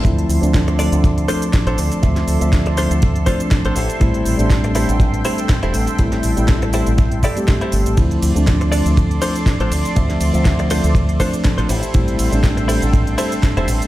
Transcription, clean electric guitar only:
X:1
M:4/4
L:1/16
Q:"Swing 16ths" 1/4=121
K:Dm
V:1 name="Clean electric guitar"
z6 [DFAd] z3 [DFAc] z2 [DFAc] z2 | z6 [DFAc] z3 [DFAc] z2 [DFAc] [EGAc]2- | [EGAc]4 z2 [EGAc] z3 [EGAc] z2 [EGAc] z2 | z6 [EGAc] z3 [EGAd] z2 [EGAc] z2 |
z6 [DFAd] z3 [DFAc] z2 [DFAc] z2 | z6 [DFAc] z3 [DFAc] z2 [DFAc] [EGAc]2- | [EGAc]4 z2 [EGAc] z3 [EGAc] z2 [EGAc] z2 |]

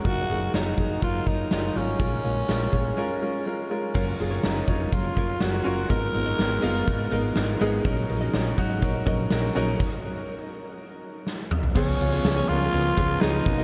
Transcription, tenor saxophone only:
X:1
M:4/4
L:1/8
Q:1/4=123
K:Ebm
V:1 name="Tenor saxophone"
G2 E2 F E E D- | D6 z2 | z2 E2 F2 G2 | B6 z2 |
z8 | z8 | D3 F3 E2 |]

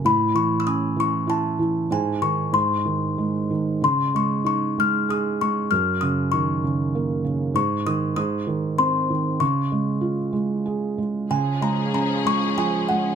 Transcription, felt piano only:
X:1
M:3/4
L:1/8
Q:1/4=96
K:Db
V:1 name="Felt piano" clef=bass
=A,, =E, ^C E, =E E, | A,, E, A,, E, A, E, | D, A, E A, A A, | G,, D, E, D, B, D, |
A,, E, A,, E, C E, | D, A, F A, A A, | D, A, D A, F, A, |]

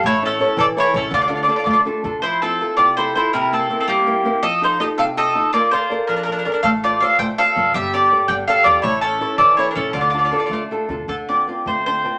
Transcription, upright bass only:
X:1
M:6/8
L:1/8
Q:3/8=109
K:Dm
V:1 name="Upright bass" clef=bass
A,,,3 A,,, z A,,, | D,,3 D,, z D,, | z6 | z6 |
z6 | z6 | A,,,3 A,,, z ^F,,, | G,,,3 G,,, z E,, |
A,,,3 A,,, z A,,, | D,,3 D,, z D,, | D,, z2 D,,3 |]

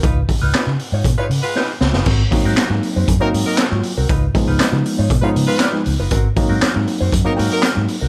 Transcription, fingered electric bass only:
X:1
M:4/4
L:1/16
Q:1/4=118
K:Abmix
V:1 name="Fingered electric bass" clef=bass
D,,2 z D,, z D, z A,, _C, z D, z3 D,, G,,, | A,,,2 z A,, z A,, z G,, G,, z A,, z2 A,, z C,, | D,,2 z D,, z D, z A,, _C, z D, z3 D,, G,,, | A,,,2 z A,, z A,, z G,, G,, z A,, z2 A,, z C,, |]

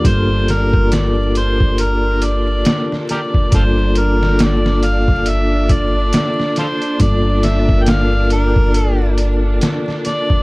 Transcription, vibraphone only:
X:1
M:4/4
L:1/16
Q:"Swing 16ths" 1/4=69
K:Gdor
V:1 name="Vibraphone"
[B,DFA]3 [B,DFB]12- [B,DFB] | [B,DFA]3 [B,DA]12- [B,DA] | [B,DFA]3 [B,DFB]12- [B,DFB] |]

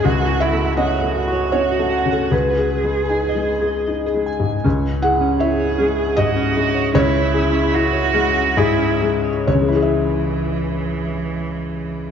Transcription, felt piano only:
X:1
M:3/4
L:1/16
Q:1/4=77
K:C#m
V:1 name="Felt piano"
z2 e2 d4 c3 A | B8- B2 z2 | z2 f2 e4 d4 | c8 G4 |
[C,,C,G,EGce]12 |]
V:2 name="Felt piano" clef=bass
(3C,,2 F2 A,2 (3C2 A,2 F2 (3C2 A,2 C,2 | (3C,,2 G2 G,2 (3D2 G,2 G2 (3D2 G,2 G,,2 | C,,2 G2 E2 G,2 G,,2 G,2 | C,,2 G2 E2 G,2 G,,2 G,2 |
z12 |]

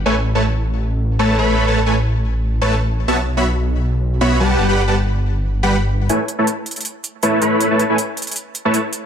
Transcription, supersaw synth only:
X:1
M:4/4
L:1/16
Q:"Swing 16ths" 1/4=159
K:Bmix
V:1 name="Supersaw synth"
[A,ABcg] z2 [A,ABca] z8 [A,ABca]2 [A,ABcb]2- | [A,ABcb] [A,ABca] z [A,ABcg] z6 z [A,ABca] z4 | [B,Fcea] z2 [B,Fceb] z8 [B,Fceb]2 [=G,=GBfa]2- | [=G,=GBfa] [G,GBfb] z [G,GBfa] z6 z [G,GBfb] z4 |
[A,EBcg] z2 [A,EBca] z8 [A,EBca]2 [A,EBcb]2- | [A,EBcb] [A,EBca] z [A,EBcg] z6 z [A,EBca] z4 |]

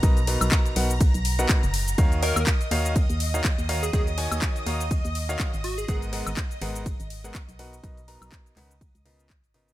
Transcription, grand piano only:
X:1
M:4/4
L:1/16
Q:"Swing 16ths" 1/4=123
K:Ebm
V:1 name="Grand piano"
[=B,,^D^A=B^d] z [B,,DAB^a]4 [B,,DAB^f] z4 [B,,DABf]2 z3 | [E,EGdf]2 [E,EGdf] z3 [E,EGdf]2 z3 [E,EGdf] z2 [E,EGdf] z | [E,EGde] z [E,EGda]4 [E,EGdf] z4 [E,EGdf]2 z3 | [A,,CABg]2 [A,,CABg] z3 [A,,CABg]2 z3 [A,,CABg] z2 [=B,,^D^A=B^f] z |
[=B,,^D^A=B^d] z [B,,DAB^a]4 [_D,^DAB^f] z3 [_D,C=F_Be]2 z2 [D,CFBe] z |]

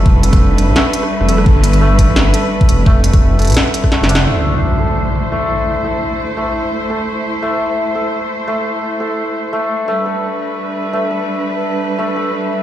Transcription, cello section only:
X:1
M:4/4
L:1/8
Q:"Swing 16ths" 1/4=171
K:Am
V:1 name="Cello section"
[G,DB]8- | [G,DB]8- | [G,DB]8 | [A,Ec]8- |
[A,Ec]8- | [A,Ec]8- | [A,Ec]8 | [G,DB]8- |
[G,DB]8 |]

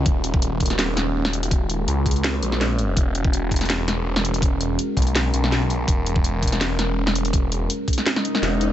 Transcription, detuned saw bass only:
X:1
M:4/4
L:1/8
Q:"Swing 16ths" 1/4=165
K:Fblyd
V:1 name="Detuned saw bass" clef=bass
E,,,6 E,,,2- | E,,,2 D,,3 B,,,3 | =E,,,6 E,,,2- | =E,,,2 z =B,,,2 B,,,3 |
=E,,,6 E,,,2- | =E,,,2 z4 E,,,2 |]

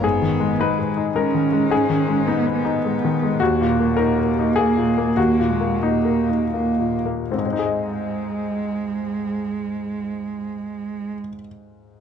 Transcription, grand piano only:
X:1
M:3/4
L:1/8
Q:1/4=95
K:D#phr
V:1 name="Grand piano"
G2 B2 A2 | G2 D3 z | F2 A2 G2 | F2 D3 z |
[G,,G,^B,DGd]6- | [G,,G,^B,DGd]6 |]
V:2 name="Grand piano" clef=bass
(3G,, D, G, (3D B D (3G, D, G, | (3G,, D, G,- (3G, B D (3G, D, G, | (3D,, A,, A, (3D A D (3A, A,, A, | (3D,, A,, A,- (3A, A D (3A, A,, A, |
z6 | z6 |]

